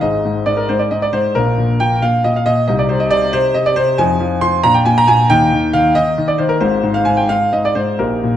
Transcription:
0.01 G#1 G#2 D#4 G#4 D#5
0.25 G#2
0.46 G#2 D5
0.57 A#4
0.69 G#2 C5
0.79 D5
0.91 G#2 D#5
1.02 D5
1.13 G#2 C5
1.35 A#1 A#2 D4 F4 A#4
1.58 A#2
1.80 A#2 G5
2.02 A#2 F5
2.24 A#2 D#5
2.36 F5
2.46 A#2 D#5
2.68 C2 C3 C4 D#4 D#5
2.79 D5
2.89 C3 C5
3.00 D#5
3.11 C3 D5
3.33 C3 C5
3.54 C3 D#5
3.66 D5
3.76 C3 C5
3.98 F2 F3 C4 D#4 G#5
4.20 F3
4.41 F3 C6
4.63 A#2 A#3 D4 A#5
4.74 G5
4.85 A#2 G#5
4.98 A#5
5.07 A#2 G#5
5.30 D#2 D#3 A#3 D#4 G5
5.52 D#3
5.73 D#3 F5
5.95 D#3 D#5
6.18 D#3
6.28 D5
6.38 D#3 C5
6.49 A#4
6.61 G#1 G#2 C4 F4 C5
6.83 G#2
6.94 F5
7.05 G#2 G#5
7.17 G5
7.29 G#2 F5
7.53 G#2 D#5
7.65 D5
7.75 G#2 C5
7.99 A#1 A#2 D#4 G4 A#4
8.23 A#2

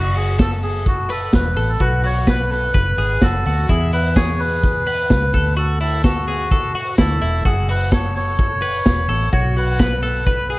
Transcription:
Already playing: F#1 F#4
0.15 F#4 G#4, open hi-hat
0.39 A4, kick, snare, closed hi-hat
0.63 G#4, open hi-hat
0.86 F#4, kick, closed hi-hat
1.09 A4 B4, open hi-hat
1.32 E1 B4, kick, snare, closed hi-hat
1.57 A1 A4, open hi-hat
1.69 A4
1.80 B1 F#4 B4, kick, closed hi-hat
2.03 F#4 C#5, open hi-hat
2.27 B4, kick, snare, closed hi-hat
2.51 A4 B4, open hi-hat
2.74 F#1 B4, kick, closed hi-hat
2.97 G#1 G#4, open hi-hat
3.21 F#1 F#4 A4, kick, snare, closed hi-hat
3.45 D2 F#4, open hi-hat
3.69 E2 E4 G#4, kick, closed hi-hat
3.92 E4 B4, open hi-hat
4.16 G#4 C#5, kick, snare, closed hi-hat
4.40 B4, open hi-hat
4.63 kick, closed hi-hat
4.87 B4, open hi-hat
5.10 C#2, kick, snare, closed hi-hat
5.34 D2 A4, kick, open hi-hat
5.57 F#4 A4, closed hi-hat
5.80 E4 A4, open hi-hat
6.04 F#4 A4, kick, snare, closed hi-hat
6.28 G#4, open hi-hat
6.51 A4, kick, closed hi-hat
6.75 F#4, open hi-hat
6.98 D2 E4 A4, kick, snare, closed hi-hat
7.22 E1 E4, open hi-hat
7.45 F#1 F#4 G#4, kick, closed hi-hat
7.68 F#4 B4, open hi-hat
7.92 A4 C#5, kick, snare, closed hi-hat
8.16 C#5, open hi-hat
8.39 kick, closed hi-hat
8.62 B4, open hi-hat
8.85 E1, kick, snare, closed hi-hat
9.09 A1 A4, open hi-hat
9.33 B1 F#4 C#5, kick, closed hi-hat
9.56 F#4 B4, open hi-hat
9.79 B4, kick, snare, closed hi-hat
10.03 A4, open hi-hat
10.27 B4, kick, closed hi-hat
10.50 G#4, open hi-hat

